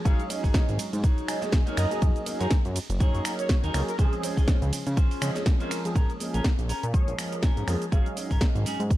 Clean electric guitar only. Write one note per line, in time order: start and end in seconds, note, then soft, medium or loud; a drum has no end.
0.05 0.19 D#4 loud
0.05 0.19 F#4 medium
0.05 0.19 G#4 loud
0.05 0.20 C#5 loud
0.30 muted clean electric guitar stroke soft
0.44 0.61 D#4 medium
0.44 0.62 F#4 medium
0.44 0.62 G#4 medium
0.44 0.62 C#5 medium
0.79 muted clean electric guitar stroke soft
1.03 1.35 D#4 medium
1.03 1.35 F#4 medium
1.03 1.35 G#4 medium
1.03 1.36 C#5 medium
1.66 1.76 D#4 medium
1.66 1.76 F#4 medium
1.66 1.76 G#4 medium
1.66 1.78 C#5 medium
1.77 2.18 D#4 medium
1.77 2.18 F#4 medium
1.77 2.18 G#4 medium
1.77 2.18 A#4 loud
2.26 muted clean electric guitar stroke soft
2.40 2.58 D#4 medium
2.40 2.58 F#4 medium
2.40 2.58 G#4 medium
2.40 2.58 A#4 medium
2.75 muted clean electric guitar stroke soft
3.00 3.32 D#4 medium
3.00 3.32 F#4 medium
3.00 3.32 G#4 medium
3.00 3.32 A#4 medium
3.63 3.81 D#4 loud
3.63 3.81 F#4 medium
3.63 3.81 G#4 medium
3.63 3.81 A#4 medium
3.98 4.12 C#4 loud
3.98 4.13 F4 medium
3.98 4.13 G#4 loud
3.98 4.13 C5 loud
4.23 muted clean electric guitar stroke soft
4.37 4.55 C#4 medium
4.37 4.55 F4 medium
4.37 4.55 G#4 medium
4.37 4.55 D#5 medium
4.72 muted clean electric guitar stroke soft
4.97 5.29 C#4 medium
4.97 5.29 F4 medium
4.97 5.29 G#4 medium
4.97 5.29 C5 loud
5.60 5.78 C#4 medium
5.60 5.78 F4 medium
5.60 5.78 G#4 medium
5.60 5.78 C5 medium
5.95 6.09 C#4 loud
5.95 6.10 G#4 medium
5.95 6.10 A#4 loud
6.20 muted clean electric guitar stroke soft
6.34 6.45 C#4 medium
6.34 6.45 G#4 medium
6.34 6.45 A#4 medium
6.58 muted clean electric guitar stroke soft
6.69 6.83 C#4 medium
6.69 6.83 G#4 medium
6.69 6.84 A#4 loud
7.32 muted clean electric guitar stroke loud
7.43 7.67 C#4 medium
7.43 7.68 G#4 medium
7.43 7.68 A#4 medium
7.92 8.06 C#4 loud
7.92 8.06 F#4 medium
7.92 8.06 G#4 loud
8.16 muted clean electric guitar stroke soft
8.30 8.41 C#4 medium
8.30 8.41 F#4 medium
8.30 8.42 A#4 loud
8.55 muted clean electric guitar stroke soft
8.66 8.80 C#4 medium
8.66 8.80 F#4 medium
8.66 8.80 G#4 medium